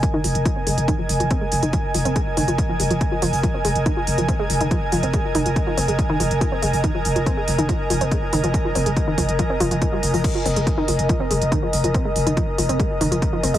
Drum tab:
CC |----------------|----------------|----------------|----------------|
HH |x-oxx-oxx-oxx-ox|x-oxx-oxx-oxx-oo|x-oxx-oxx-oxx-ox|x-oxx-oxx-oxx-oo|
BD |o---o---o---o---|o---o---o---o---|o---o---o---o---|o---o---o---o---|

CC |----------------|----------------|x---------------|----------------|
HH |x-oxx-oxx-oxx-ox|x-oxx-oxx-oxx-oo|x-oxx-oxx-oxx-ox|x-oxx-oxx-oxx-oo|
BD |o---o---o---o---|o---o-o-o---o---|o---o---o---o---|o---o---o---o---|